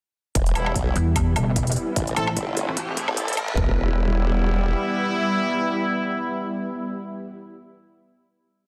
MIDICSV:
0, 0, Header, 1, 7, 480
1, 0, Start_track
1, 0, Key_signature, 1, "minor"
1, 0, Tempo, 402685
1, 420, Time_signature, 4, 2, 24, 8
1, 10335, End_track
2, 0, Start_track
2, 0, Title_t, "Brass ensemble"
2, 0, Program_c, 0, 61
2, 660, Note_on_c, 0, 55, 92
2, 660, Note_on_c, 0, 59, 84
2, 660, Note_on_c, 0, 64, 102
2, 876, Note_off_c, 0, 55, 0
2, 876, Note_off_c, 0, 59, 0
2, 876, Note_off_c, 0, 64, 0
2, 2580, Note_on_c, 0, 60, 100
2, 2580, Note_on_c, 0, 64, 93
2, 2580, Note_on_c, 0, 69, 114
2, 2723, Note_off_c, 0, 60, 0
2, 2723, Note_off_c, 0, 64, 0
2, 2723, Note_off_c, 0, 69, 0
2, 3911, Note_on_c, 0, 60, 79
2, 3911, Note_on_c, 0, 64, 73
2, 3911, Note_on_c, 0, 69, 87
2, 4035, Note_off_c, 0, 60, 0
2, 4035, Note_off_c, 0, 64, 0
2, 4035, Note_off_c, 0, 69, 0
2, 4260, Note_on_c, 0, 55, 100
2, 4260, Note_on_c, 0, 59, 90
2, 4260, Note_on_c, 0, 64, 110
2, 8745, Note_off_c, 0, 55, 0
2, 8745, Note_off_c, 0, 59, 0
2, 8745, Note_off_c, 0, 64, 0
2, 10335, End_track
3, 0, Start_track
3, 0, Title_t, "Supersaw synth"
3, 0, Program_c, 1, 81
3, 419, Note_on_c, 1, 55, 81
3, 420, Note_on_c, 1, 59, 75
3, 420, Note_on_c, 1, 64, 86
3, 2321, Note_off_c, 1, 55, 0
3, 2321, Note_off_c, 1, 59, 0
3, 2321, Note_off_c, 1, 64, 0
3, 2340, Note_on_c, 1, 57, 83
3, 2340, Note_on_c, 1, 60, 74
3, 2340, Note_on_c, 1, 64, 91
3, 4241, Note_off_c, 1, 57, 0
3, 4241, Note_off_c, 1, 60, 0
3, 4241, Note_off_c, 1, 64, 0
3, 4261, Note_on_c, 1, 55, 85
3, 4261, Note_on_c, 1, 59, 77
3, 4261, Note_on_c, 1, 64, 91
3, 8745, Note_off_c, 1, 55, 0
3, 8746, Note_off_c, 1, 59, 0
3, 8746, Note_off_c, 1, 64, 0
3, 10335, End_track
4, 0, Start_track
4, 0, Title_t, "Wobble bass"
4, 0, Program_c, 2, 39
4, 420, Note_on_c, 2, 28, 96
4, 642, Note_off_c, 2, 28, 0
4, 660, Note_on_c, 2, 28, 96
4, 882, Note_off_c, 2, 28, 0
4, 900, Note_on_c, 2, 35, 97
4, 1122, Note_off_c, 2, 35, 0
4, 2340, Note_on_c, 2, 33, 100
4, 2563, Note_off_c, 2, 33, 0
4, 2820, Note_on_c, 2, 31, 96
4, 3170, Note_off_c, 2, 31, 0
4, 3671, Note_on_c, 2, 33, 99
4, 3890, Note_off_c, 2, 33, 0
4, 3911, Note_on_c, 2, 33, 95
4, 4130, Note_off_c, 2, 33, 0
4, 4151, Note_on_c, 2, 33, 98
4, 4243, Note_off_c, 2, 33, 0
4, 4260, Note_on_c, 2, 28, 99
4, 5652, Note_off_c, 2, 28, 0
4, 10335, End_track
5, 0, Start_track
5, 0, Title_t, "Wobble bass"
5, 0, Program_c, 3, 39
5, 1140, Note_on_c, 3, 40, 96
5, 1603, Note_off_c, 3, 40, 0
5, 1620, Note_on_c, 3, 28, 98
5, 2082, Note_off_c, 3, 28, 0
5, 2580, Note_on_c, 3, 33, 91
5, 2803, Note_off_c, 3, 33, 0
5, 3191, Note_on_c, 3, 33, 96
5, 3650, Note_off_c, 3, 33, 0
5, 10335, End_track
6, 0, Start_track
6, 0, Title_t, "Riser"
6, 0, Program_c, 4, 103
6, 420, Note_on_c, 4, 60, 79
6, 4260, Note_off_c, 4, 60, 0
6, 10335, End_track
7, 0, Start_track
7, 0, Title_t, "Drums"
7, 420, Note_on_c, 9, 36, 94
7, 420, Note_on_c, 9, 42, 80
7, 539, Note_off_c, 9, 36, 0
7, 539, Note_off_c, 9, 42, 0
7, 551, Note_on_c, 9, 42, 36
7, 660, Note_off_c, 9, 42, 0
7, 660, Note_on_c, 9, 42, 54
7, 660, Note_on_c, 9, 77, 76
7, 779, Note_off_c, 9, 42, 0
7, 779, Note_off_c, 9, 77, 0
7, 791, Note_on_c, 9, 77, 73
7, 900, Note_on_c, 9, 36, 97
7, 900, Note_on_c, 9, 42, 80
7, 910, Note_off_c, 9, 77, 0
7, 1019, Note_off_c, 9, 36, 0
7, 1020, Note_off_c, 9, 42, 0
7, 1140, Note_on_c, 9, 42, 57
7, 1259, Note_off_c, 9, 42, 0
7, 1380, Note_on_c, 9, 36, 97
7, 1380, Note_on_c, 9, 42, 82
7, 1380, Note_on_c, 9, 77, 50
7, 1499, Note_off_c, 9, 36, 0
7, 1499, Note_off_c, 9, 42, 0
7, 1499, Note_off_c, 9, 77, 0
7, 1620, Note_on_c, 9, 42, 54
7, 1620, Note_on_c, 9, 77, 57
7, 1739, Note_off_c, 9, 42, 0
7, 1739, Note_off_c, 9, 77, 0
7, 1860, Note_on_c, 9, 36, 93
7, 1860, Note_on_c, 9, 42, 80
7, 1979, Note_off_c, 9, 36, 0
7, 1979, Note_off_c, 9, 42, 0
7, 1991, Note_on_c, 9, 42, 50
7, 2046, Note_off_c, 9, 42, 0
7, 2046, Note_on_c, 9, 42, 67
7, 2100, Note_off_c, 9, 42, 0
7, 2100, Note_on_c, 9, 42, 39
7, 2219, Note_off_c, 9, 42, 0
7, 2340, Note_on_c, 9, 36, 104
7, 2340, Note_on_c, 9, 42, 78
7, 2459, Note_off_c, 9, 36, 0
7, 2459, Note_off_c, 9, 42, 0
7, 2471, Note_on_c, 9, 42, 37
7, 2580, Note_off_c, 9, 42, 0
7, 2580, Note_on_c, 9, 42, 55
7, 2580, Note_on_c, 9, 77, 78
7, 2699, Note_off_c, 9, 42, 0
7, 2699, Note_off_c, 9, 77, 0
7, 2711, Note_on_c, 9, 77, 77
7, 2820, Note_on_c, 9, 36, 107
7, 2820, Note_on_c, 9, 42, 80
7, 2830, Note_off_c, 9, 77, 0
7, 2939, Note_off_c, 9, 36, 0
7, 2939, Note_off_c, 9, 42, 0
7, 3060, Note_on_c, 9, 42, 55
7, 3179, Note_off_c, 9, 42, 0
7, 3300, Note_on_c, 9, 36, 103
7, 3300, Note_on_c, 9, 42, 78
7, 3419, Note_off_c, 9, 36, 0
7, 3420, Note_off_c, 9, 42, 0
7, 3540, Note_on_c, 9, 36, 105
7, 3540, Note_on_c, 9, 42, 53
7, 3659, Note_off_c, 9, 36, 0
7, 3659, Note_off_c, 9, 42, 0
7, 3671, Note_on_c, 9, 77, 57
7, 3780, Note_on_c, 9, 36, 106
7, 3780, Note_on_c, 9, 42, 78
7, 3790, Note_off_c, 9, 77, 0
7, 3899, Note_off_c, 9, 42, 0
7, 3900, Note_off_c, 9, 36, 0
7, 3911, Note_on_c, 9, 36, 93
7, 3911, Note_on_c, 9, 42, 50
7, 3965, Note_off_c, 9, 42, 0
7, 3965, Note_on_c, 9, 42, 66
7, 4020, Note_off_c, 9, 36, 0
7, 4020, Note_off_c, 9, 42, 0
7, 4020, Note_on_c, 9, 36, 108
7, 4020, Note_on_c, 9, 42, 38
7, 4020, Note_on_c, 9, 77, 51
7, 4139, Note_off_c, 9, 42, 0
7, 4139, Note_off_c, 9, 77, 0
7, 4140, Note_off_c, 9, 36, 0
7, 4151, Note_on_c, 9, 36, 92
7, 4260, Note_off_c, 9, 36, 0
7, 4260, Note_on_c, 9, 36, 107
7, 4260, Note_on_c, 9, 43, 107
7, 4380, Note_off_c, 9, 36, 0
7, 4380, Note_off_c, 9, 43, 0
7, 10335, End_track
0, 0, End_of_file